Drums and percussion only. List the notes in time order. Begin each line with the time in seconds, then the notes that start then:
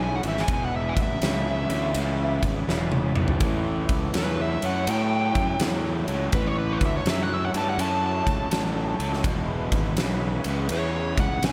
0.23 ride
0.37 snare
0.48 kick, ride
0.97 kick, ride
1.22 snare, ride
1.70 ride
1.94 ride
2.43 kick, ride
2.69 snare
2.92 high tom
3.15 mid tom
3.28 floor tom
3.40 kick, ride
3.89 kick, ride
4.14 snare, ride
4.62 ride
4.87 ride
5.35 kick, ride
5.60 snare, ride
6.08 ride
6.32 kick, ride
6.81 kick, ride
7.06 snare, ride
7.54 ride
7.79 ride
8.27 kick, ride
8.51 snare, ride
9.00 ride
9.13 snare
9.24 kick, ride
9.72 kick, ride
9.97 snare, ride
10.44 ride
10.69 ride
11.18 kick, ride
11.43 snare, ride